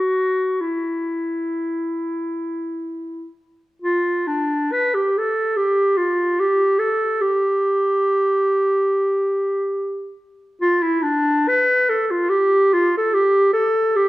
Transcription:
Already playing: F#4
0.61 E4
3.82 F4
4.28 D4
4.72 B4
4.94 G4
5.18 A4
5.56 G4
5.97 F4
6.40 G4
6.79 A4
7.21 G4
10.62 F4
10.83 E4
11.03 D4
11.48 B4
11.90 A4
12.11 F4
12.30 G4
12.73 F4
12.98 A4
13.14 G4
13.53 A4
13.96 G4

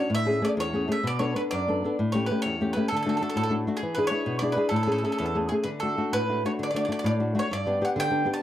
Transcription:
Already playing: C#5
0.10 A2
0.15 E5
0.26 A3 C#4 G#4
0.42 A3 C#4 G#4 D5
0.57 E2 C#5
0.73 A3 C#4 G#4
0.88 A3 C#4 G#4 E5
1.03 B2 D5
1.19 B3 D4 A4 C#5
1.35 B3 D4 A4 B4
1.51 F#2 D5
1.68 B3 D4 A4
1.84 B3 D4 A4
1.99 A2
2.12 A3 C#4 G4 C#5
2.26 B4
2.30 A3 C#4 G4
2.42 E2 C#5
2.61 A3 C#4 G4
2.73 A3 B4
2.77 C#4 G4
2.88 D3 A4
2.97 A4
3.02 A3 D4 A4
3.07 F#4 A4
3.17 A4
3.21 A3 D4 F#4 A4
3.29 A4
3.36 A2 A4
3.43 A4
3.50 A3 D4 F#4
3.67 A3 D4 F#4
3.77 G#4
3.83 E3
3.95 D4 E4 G#4 B4
4.07 D4 C#5
4.11 E4 G#4
4.26 B2
4.39 D4 E4 D5
4.43 G#4
4.52 D4 B4
4.57 E4 G#4
4.69 A2 A4
4.76 A4
4.83 A3 A4
4.87 C#4 G#4
4.92 A4
4.98 A4
5.03 A3 C#4 G#4 A4
5.12 A4
5.18 E2 A4
5.26 A4
5.35 A3 C#4 G#4
5.49 A3 C#4 G#4
5.64 D3 B4
5.80 A3 D4 F#4 A4
5.97 A3 D4 F#4
6.13 A2 B4
6.29 A3 D4 F#4
6.45 A3 D4 F#4 C#5
6.59 D3
6.63 D5
6.71 A3 D5
6.75 D4 F#4 D5
6.85 A3 D4 D5
6.90 F#4 D5
6.99 D5
7.04 A2 D5
7.20 A3 D4 F#4
7.35 A3 D4 F#4
7.39 C#5
7.51 G2 D5
7.66 B3 D4 G4
7.81 B3 D4 G4 F#5
7.96 D3 G5
8.10 B3 D4 G4
8.25 B3 D4 G4
8.34 A5

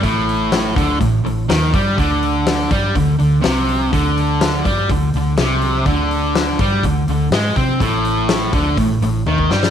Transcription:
0.02 A1 A2, kick, open hi-hat
0.29 open hi-hat
0.52 snare, open hi-hat
0.76 D2 D3, kick, open hi-hat
1.00 A1 A2, kick, open hi-hat
1.25 A1 A2, open hi-hat
1.49 D#2 D#3, snare, open hi-hat
1.73 G2 G3, kick, open hi-hat
1.97 D2 D3, kick, open hi-hat
2.23 open hi-hat
2.46 snare, open hi-hat
2.71 G2 G3, kick, open hi-hat
2.95 D2 D3, kick, open hi-hat
3.19 D2 D3, open hi-hat
3.42 C2 C3, snare, open hi-hat
3.69 open hi-hat
3.92 D2 D3, kick, open hi-hat
4.17 open hi-hat
4.41 snare, open hi-hat
4.65 G2 G3, kick, open hi-hat
4.89 D2 D3, kick, open hi-hat
5.14 D2 D3, open hi-hat
5.37 C2 C3, snare, open hi-hat
5.62 open hi-hat
5.85 D2 D3, kick, open hi-hat
6.11 open hi-hat
6.35 snare, open hi-hat
6.59 G2 G3, kick, open hi-hat
6.83 D2 D3, kick, open hi-hat
7.07 D2 D3, open hi-hat
7.30 G#2 G#3, snare, open hi-hat
7.56 C3 C4, kick, open hi-hat
7.80 A1 A2, kick, open hi-hat
8.05 open hi-hat
8.29 snare, open hi-hat
8.52 D2 D3, kick, open hi-hat
8.76 A1 A2, kick, open hi-hat
9.01 A1 A2, open hi-hat
9.26 D#2 D#3, high tom
9.38 kick
9.50 G2 G3, snare
9.63 snare

